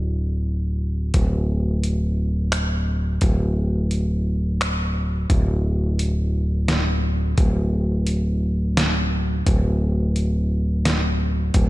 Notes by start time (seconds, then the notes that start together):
Already playing: D1
1.14 D1, kick, closed hi-hat
1.84 closed hi-hat
2.52 finger snap, closed hi-hat
3.21 D1, kick, closed hi-hat
3.91 closed hi-hat
4.61 finger snap, closed hi-hat
5.30 D1, kick, closed hi-hat
5.99 closed hi-hat
6.68 snare, closed hi-hat
7.38 D1, kick, closed hi-hat
8.07 closed hi-hat
8.77 snare, closed hi-hat
9.47 D1, kick, closed hi-hat
10.16 closed hi-hat
10.85 snare, closed hi-hat
11.54 D1, kick, closed hi-hat